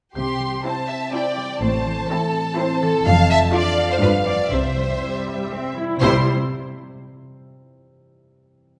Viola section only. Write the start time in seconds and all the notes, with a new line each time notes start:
0.64 C4 E4
1.13 C4 E4
2.11 C4 E4
2.58 C4 E4
3.54 D4 F4
4.02 D4 F4
5.02 G3
5.52 C4
5.78 E4
6.02 G3 E4